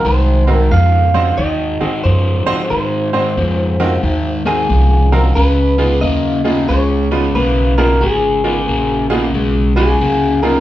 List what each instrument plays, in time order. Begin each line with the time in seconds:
0.05 upright bass C2, overdriven electric guitar G#2 D#3, clean electric guitar C5
0.47 overdriven electric guitar G#2 D#3, upright piano C4 D#4 F#4 A#4
0.53 clean electric guitar A#4
0.71 upright bass F2, overdriven electric guitar G#2 F3, clean electric guitar F5
1.14 overdriven electric guitar G#2 F3, upright piano C4 D#4 F#4 C5
1.38 upright bass D#2, overdriven electric guitar G#2 D#3, clean electric guitar D#5
1.80 overdriven electric guitar G#2 D#3, upright piano C4 D#4 F#4 G#4, muted upright bass stroke
2.04 upright bass F#2, overdriven electric guitar G#2 F3, clean electric guitar C5
2.46 overdriven electric guitar G#2 F3, upright piano C4 D#4 F#4 C5, muted upright bass stroke
2.70 overdriven electric guitar G#2 D#3, upright bass G#2, clean electric guitar C5
3.13 overdriven electric guitar G#2 D#3, upright piano C4 D#4 F#4 C5
3.37 upright bass F2, overdriven electric guitar G#2 F3
3.80 overdriven electric guitar G#2 F3, upright piano C4 D#4 F#4 A#4
4.03 upright bass D#2, overdriven electric guitar G#2 D#3
4.45 overdriven electric guitar G#2 D#3, upright piano C4 D#4 F#4 A#4, clean electric guitar G#4
4.69 upright bass C2, overdriven electric guitar G#2 F3
5.12 overdriven electric guitar G#2 F3, upright piano C4 D#4 F#4 A#4, clean electric guitar A#4
5.35 upright bass C#2, overdriven electric guitar C#3 G#3, clean electric guitar B4
5.78 overdriven electric guitar C#3 G#3, upright piano B3 D#4 F4 G#4
6.01 upright bass D#2, overdriven electric guitar C#3 A#3, clean electric guitar D#5
6.44 overdriven electric guitar C#3 A#3, upright piano B3 D#4 F4 G#4
6.69 upright bass C#2, overdriven electric guitar C#3 G#3, clean electric guitar C#5
7.11 overdriven electric guitar C#3 G#3, upright piano B3 D#4 F4 B4
7.35 upright bass B1, overdriven electric guitar C#3 A#3, clean electric guitar B4
7.78 overdriven electric guitar C#3 A#3, upright piano B3 D#4 F4 G#4, clean electric guitar A#4
8.01 upright bass G#1, overdriven electric guitar C#3 G#3, clean electric guitar G#4
8.44 overdriven electric guitar C#3 G#3, upright piano B3 D#4 F4 A#4
8.68 upright bass A#1, overdriven electric guitar C#3 A#3
9.10 overdriven electric guitar C#3 A#3, upright piano B3 D#4 F4 G#4
9.15 clean electric guitar F#4
9.34 upright bass B1, overdriven electric guitar C#3 G#3
9.76 overdriven electric guitar C#3 G#3, upright piano B3 D#4 F4 B4, clean electric guitar G#4
10.00 upright bass C#2, overdriven electric guitar C#3 A#3
10.43 overdriven electric guitar C#3 A#3, upright piano B3 D#4 F4 G#4, clean electric guitar A#4